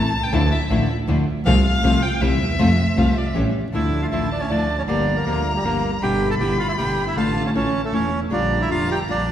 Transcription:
Already playing: E3 A3 C4 E4 A5
0.13 C2
0.23 G5
0.32 D2 D3 F3 A3 D4 E4 A5
0.51 E5
0.69 A1 D3 F3 A3 D4 E4
1.08 D2 D3 F3 A3 D4 E4
1.46 C2 C3 F3 A3 C4 F4 F5
1.65 F5
1.83 C2 C3 F3 A3 C4 F4
2.02 G5
2.20 C2 C3 E3 G3 C4 E4 E5
2.40 D#2
2.58 F2 C3 F3 A3 C4 F4
2.96 C2 C3 F3 A3 C4 F4 F5
3.08 E5
3.17 D5
3.26 E5
3.34 A1 E3 G3 A3 C#4 E4 G4
3.72 D2 D3 F3 A3 D4 E4 E5 A5
4.02 F4 F5
4.11 A1 D3 F3 A3 D4 E4 E5
4.32 D4 D5
4.40 C#4 C#5
4.49 D2 D3 F3 A3 D4 E4 D5
4.78 C#4 C#5
4.87 G1 D3 F3 G3 A#3 D4 F4 G4 D5 A#5
5.16 A#3 A#4
5.26 D2 D3 F3 G3 A#3 D4 F4 G4 A#4
5.55 G3 G4
5.63 G1 D3 F3 G3 A#3 D4 F4 G4 A#4
6.02 G1 B2 D3 G3 B3 D4 E4 G4 G5 B5
6.30 A4 A5
6.40 G1 B2 D3 G3 B3 D4 E4 G4 G5
6.58 F4 F5
6.68 E4 E5
6.78 G1 B2 D3 G3 B3 D4 E4 G4 G5
7.07 E4 E5
7.16 A1 D3 A3 D4 F4 F5 A5
7.46 C#4 C#5
7.54 A1 E3 A3 C#4 E4 C#5 A5
7.84 A3 A4
7.92 E1 E3 A3 C#4 E4 C#5
8.30 A#1 D3 G3 A#3 D4 F4 G4 D5 A#5
8.61 E4 E5
8.69 F1 D3 G3 A#3 D4 F4 G4 F5
8.91 G4 G5
9.08 A#1 D3 G3 A#3 D4 F4 G4 D5

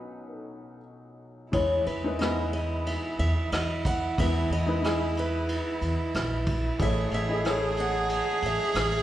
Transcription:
Already playing: B1 B2 F#3 C#4 D#4 B4
0.35 A4
1.52 E2 E3 G#3 E4 B4 C#5 D#5, kick, ride
1.86 E2 B4, ride
2.04 G#3 D#4 E4 B4
2.19 G#3 B3 E4 B4 D#5, cross-stick, ride
2.53 D#5, ride
2.86 E5, ride
3.19 E2 E5, ride
3.52 E2 D#5, cross-stick, ride
3.85 F#5, kick, ride
4.18 E2 E3 G#3 B3 E4 B4 E5, kick, ride
4.50 E2 D#5, ride
4.66 G#3 D#4 E4 B4
4.82 G#3 E4 G#4 D#5, cross-stick, ride
5.17 B4, ride
5.49 ride
5.81 E2, ride
6.14 A#1, cross-stick, ride
6.46 kick, ride
6.79 A1 A2 A3 E4 G#4 C#5 E5, kick, ride
7.11 A1 E5, ride
7.29 A3 E4 G#4 D#5
7.44 A3 E4 G#4 C#5, cross-stick, ride
7.77 F#5, ride
8.09 ride
8.42 A1 E5, ride
8.75 A1, cross-stick, ride

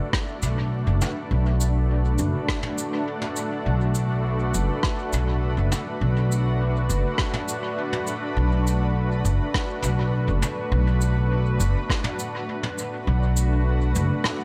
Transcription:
Already playing: A3 D4 F#4 B4
0.13 kick, cross-stick
0.42 B1, mid tom, cabasa
0.87 F#1
1.01 mid tom, cabasa
1.31 B1
1.60 cabasa
2.18 F#1, cabasa
2.48 kick, cross-stick
2.63 mid tom
2.78 cabasa
3.22 mid tom
3.36 cabasa
3.66 B1
3.95 cabasa
4.54 F#1, cabasa
4.83 kick, cross-stick
5.13 B1, mid tom, cabasa
5.57 F#1
5.72 mid tom, cabasa
6.01 B1
6.32 cabasa
6.89 F#1, cabasa
7.18 kick, cross-stick
7.34 mid tom
7.48 cabasa
7.93 mid tom
8.07 cabasa
8.37 B1
8.67 cabasa
9.25 F#1, cabasa
9.54 kick, cross-stick
9.82 B1, mid tom, cabasa
10.28 F#1
10.42 mid tom, cabasa
10.72 B1
11.01 cabasa
11.60 F#1, cabasa
11.90 kick, cross-stick
12.04 mid tom
12.19 cabasa
12.63 mid tom
12.78 cabasa
13.07 B1
13.37 cabasa
13.95 F#1, cabasa
14.24 cross-stick, mid tom

